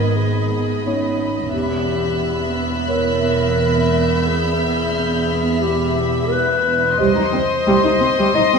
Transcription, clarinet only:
Already playing: A#4
0.16 G#4
0.86 D#4
1.54 G4
2.88 A#4
4.27 G#4
5.61 G4
6.30 B4
6.99 C5
8.35 D#5

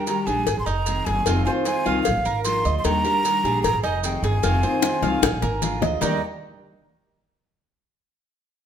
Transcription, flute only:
0.07 A#5
0.26 G#5
0.60 C6
0.65 A#5
1.05 G#5
1.45 G#5
1.66 G#5
2.03 F5
2.44 C6
2.79 C6
2.85 A#5
3.63 A#5
3.83 G#5
4.04 G5
4.23 G#5
6.04 D#5

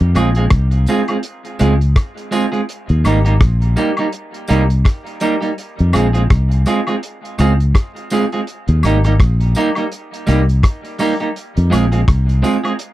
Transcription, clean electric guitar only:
0.15 G#3 C4 F4 G#4
0.36 G#3 C4 F4 G#4
0.89 G#3 C4 F4 G#4
1.09 G#3 C4 F4 G#4
1.59 G#3 C4 F4 G#4
2.31 G#3 C4 F4 G#4
2.52 G#3 C4 F4 G#4
3.04 G3 A#3 D#4 G4
3.25 G3 A#3 D#4 G4
3.76 G3 A#3 D#4 G4
3.98 G3 A#3 D#4 G4
4.48 G3 A#3 D#4 G4
5.21 G3 A#3 D#4 G4
5.41 G3 A#3 D#4 G4
5.93 G#3 C4 F4 G#4
6.13 G#3 C4 F4 G#4
6.66 G#3 C4 F4 G#4
6.87 G#3 C4 F4 G#4
7.39 G#3 C4 F4 G#4
8.11 G#3 C4 F4 G#4
8.33 G#3 C4 F4 G#4
8.84 G3 A#3 D#4 G4
9.05 G3 A#3 D#4 G4
9.56 G3 A#3 D#4 G4
9.76 G3 A#3 D#4 G4
10.27 G3 A#3 D#4 G4
10.99 G3 A#3 D#4 G4
11.20 G3 A#3 D#4 G4
11.70 G#3 C4 F4 G#4
11.92 G#3 C4 F4 G#4
12.42 G#3 C4 F4 G#4
12.64 G#3 C4 F4 G#4

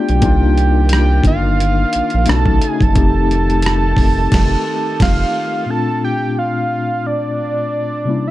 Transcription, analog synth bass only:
0.10 B1
0.23 C2
1.25 G1
1.95 A#1
2.15 A#1
2.29 B1
2.47 B1
2.82 F#1
2.97 F1
3.98 F1
4.33 F1
5.01 F1

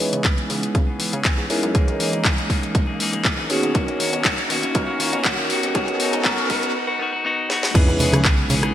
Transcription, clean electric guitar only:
0.00 E3 B3 C#4 G#4
0.24 E3 B3 C#4
0.48 E3 B3 C#4 G#4
0.61 B3 C#4 G#4
0.87 B3 C#4 G#4
0.98 E3 B3 C#4 G#4
1.12 B3 C#4 G#4
1.24 E3 B3 C#4 G#4
1.49 E3 B3 C#4 G#4
1.74 E3 A#3 D#4 G#4
1.87 A#3 D#4 G#4
1.99 E3 A#3 D#4 G#4
2.24 E3 A#3 D#4 G#4
2.37 A#3 D#4 G#4
2.49 E3 A#3 D#4 G#4
2.62 A#3 D#4 G#4
2.87 A#3 D#4 G#4
2.99 E3 A#3 D#4 G#4
3.12 A#3 D#4 G#4
3.24 E3 A#3 D#4 G#4
3.49 D#3 A#3 C#4 F#4
3.74 D#3 A#3 C#4 F#4
3.87 A#3 C#4 F#4
3.99 D#3 A#3 C#4 F#4
4.24 D#3 A#3 C#4 F#4
4.37 A#3 C#4 F#4
4.49 D#3 A#3 C#4 F#4
4.62 A#3 C#4 F#4
4.87 A#3 C#4 F#4
4.99 D#3 A#3 C#4 F#4
5.12 A#3 C#4 F#4
5.25 D#3 A#3 C#4 F#4
5.49 B3 D#4 F#4
5.75 B3 D#4 F#4
5.88 D#4 F#4
5.99 B3 D#4 F#4
6.24 B3 D#4 F#4
6.37 D#4 F#4
6.49 B3 D#4 F#4
6.62 D#4 F#4
6.87 D#4 F#4
6.99 B3 D#4 F#4
7.13 D#4 F#4
7.24 B3 D#4 F#4
7.49 B3 D#4 F#4
7.74 E3 B3 C#4 G#4
7.99 E3 B3 C#4 G#4
8.24 E3 B3 C#4 G#4
8.49 E3 B3 C#4 G#4
8.62 B3 C#4 G#4

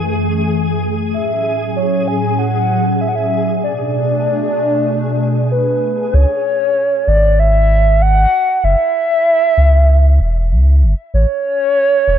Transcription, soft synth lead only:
1.14 E5
1.76 C#5
2.08 G#5
2.39 F#5
3.01 E5
3.08 F#5
3.15 E5
3.64 D5
5.51 B4
6.14 C#5
7.08 D5
7.39 E5
8.02 F#5
8.64 E5
11.14 C#5

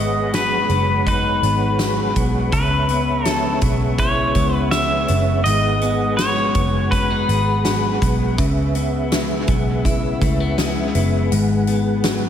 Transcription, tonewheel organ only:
Already playing: G#3 G#4 B4 C#5 F#5
2.53 C#4 E5
5.45 G#3 G#4 B4 F#5
8.37 C#4 E5
11.31 G#3 F#5

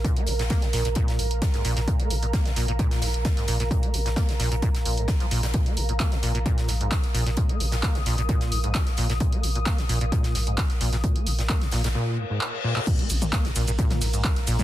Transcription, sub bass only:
0.17 A#1
0.27 A#1
0.39 A#1
0.62 A#1
0.73 A#1
0.85 A#1
1.08 A#1
1.19 A#1
1.31 A#1
1.54 A#1
1.65 A#1
1.77 A#1
2.00 A#1
2.10 A#1
2.22 A#1
2.45 A#1
2.56 A#1
2.68 A#1
2.91 A#1
3.02 A#1
3.14 A#1
3.37 A#1
3.48 A#1
3.60 A#1
3.83 A#1
3.94 A#1
4.06 A#1
4.29 A#1
4.40 A#1
4.51 A#1
4.74 A#1
4.85 A#1
4.97 A#1
5.20 A#1
5.31 A#1
5.43 A#1
5.66 A#1
5.77 A#1
5.89 A#1
6.12 A#1
6.23 A#1
6.35 A#1
6.58 A#1
6.69 A#1
6.81 A#1
7.03 A#1
7.14 A#1
7.26 A#1
7.49 A#1
7.60 A#1
7.72 A#1
7.95 A#1
8.06 A#1
8.18 A#1
8.41 A#1
8.52 A#1
8.64 A#1
8.87 A#1
8.98 A#1
9.10 A#1
9.33 A#1
9.43 A#1
9.55 A#1
9.78 A#1
9.89 A#1
10.01 A#1
10.24 A#1
10.35 A#1
10.47 A#1
10.70 A#1
10.81 A#1
10.93 A#1
11.16 A#1
11.27 A#1
11.38 A#1
11.61 A#1
11.72 A#1
11.84 A#1
12.99 A#1
13.10 A#1
13.22 A#1
13.45 A#1
13.56 A#1
13.68 A#1
13.91 A#1
14.01 A#1
14.13 A#1
14.36 A#1
14.47 A#1
14.59 A#1

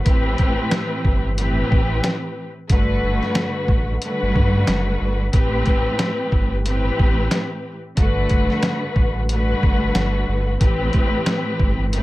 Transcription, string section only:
0.04 A2 E3 C4 G4 B4
1.37 A2 E3 C4 G4 B4
2.69 G2 D3 A3 F#4 B4
4.02 D3 G3 A3 F#4 B4
5.31 A2 E3 C4 G4 B4
6.65 A2 E3 C4 G4 B4
7.97 G2 D3 A3 F#4 B4
9.29 G2 D3 A3 F#4 B4
10.59 A2 E3 C4 G4 B4
11.92 A2 E3 C4 G4 B4

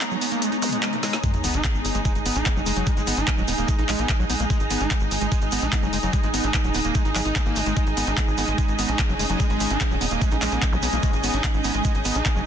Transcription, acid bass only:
0.01 G#3
0.11 F#3
0.21 B3
0.32 A#3
0.42 G#3
0.52 D#4
0.62 G#3
0.73 G#3
0.83 G#3
0.93 A#3
1.03 G#3
1.13 B3
1.24 G#3
1.44 B3
1.54 D#4
1.64 G#3
1.95 G#3
2.05 G#3
2.26 B3
2.36 D#4
2.46 G#3
2.56 F#3
2.66 G#3
2.77 F#3
2.87 G#3
2.97 G#3
3.07 B3
3.17 D#4
3.28 G#3
3.38 F#3
3.48 B3
3.58 A#3
3.68 G#3
3.79 D#4
3.89 G#3
3.99 B3
4.09 G#3
4.19 F#3
4.30 B3
4.40 A#3
4.50 G#3
4.70 B3
4.81 D#4
4.91 G#3
5.21 G#3
5.32 G#3
5.52 B3
5.62 D#4
5.72 G#3
5.83 F#3
5.93 G#3
6.03 F#3
6.13 G#3
6.23 G#3
6.34 B3
6.44 D#4
6.54 G#3
6.64 F#3
6.75 B3
6.85 A#3
6.95 G#3
7.05 D#4
7.15 F#3
7.26 D#4
7.36 G#3
7.46 A#3
7.56 G#3
7.66 G#3
7.77 G#3
7.97 B3
8.07 D#4
8.17 G#3
8.38 B3
8.48 G#3
8.58 G#3
8.79 B3
8.89 D#4
8.99 G#3
9.09 F#3
9.19 G#3
9.30 F#3
9.40 G#3
9.50 G#3
9.70 D#4
9.81 G#3
9.91 F#3
10.01 B3
10.11 A#3
10.21 G#3
10.32 D#4
10.42 G#3
10.52 B3
10.62 G#3
10.72 F#3
10.83 B3
10.93 A#3
11.03 G#3
11.24 B3
11.34 D#4
11.44 G#3
11.64 B3
11.74 G#3
11.85 G#3
12.05 B3
12.15 D#4
12.26 G#3
12.36 F#3

